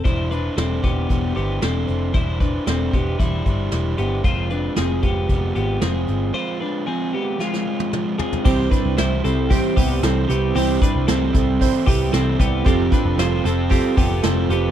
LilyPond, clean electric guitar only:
\new Staff \with { instrumentName = "Clean electric guitar" } { \time 4/4 \key c \major \tempo 4 = 114 <e' c''>8 <d' b'>8 <c' a'>8 <b g'>4 <b g'>8 <c' a'>4 | <e' c''>8 <d' b'>8 <c' a'>8 <b g'>8 <g e'>4. <b g'>8 | <f' c''>8 <d' b'>8 <c' aes'>8 <b g'>4 <b g'>8 <c' aes'>4 | <f' c''>8 <d' b'>8 <c' aes'>8 <b g'>8 <aes f'>4. <c' aes'>8 |
<c' g'>8 <d' b'>8 <e' c''>8 <c' a'>8 <c' g'>8 <b g'>8 <c' a'>8 <b g'>8 | <c' g'>8 <d' b'>8 <c' a'>4. <b g'>8 <c' a'>8 <b g'>8 | <c' g'>8 <d' b'>8 <f' c''>8 <c' a'>8 <c' g'>8 <b g'>8 <c' a'>8 <b g'>8 | }